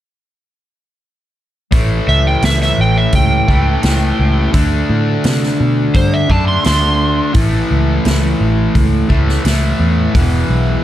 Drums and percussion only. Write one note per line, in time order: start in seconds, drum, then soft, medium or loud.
1.72 kick loud
1.72 open hi-hat soft
2.42 snare loud
2.42 open hi-hat soft
2.61 snare soft
3.12 kick medium
3.12 open hi-hat soft
3.48 kick medium
3.83 snare medium
3.83 open hi-hat soft
4.54 kick loud
4.54 open hi-hat medium
5.24 snare medium
5.24 open hi-hat soft
5.43 snare soft
5.94 kick medium
5.94 open hi-hat soft
6.30 kick medium
6.64 snare medium
6.64 open hi-hat soft
7.34 kick loud
7.34 open hi-hat soft
8.05 snare loud
8.05 open hi-hat soft
8.75 kick medium
8.75 open hi-hat soft
9.10 kick medium
9.29 snare soft
9.45 snare medium
9.45 open hi-hat soft
10.15 kick loud
10.15 open hi-hat medium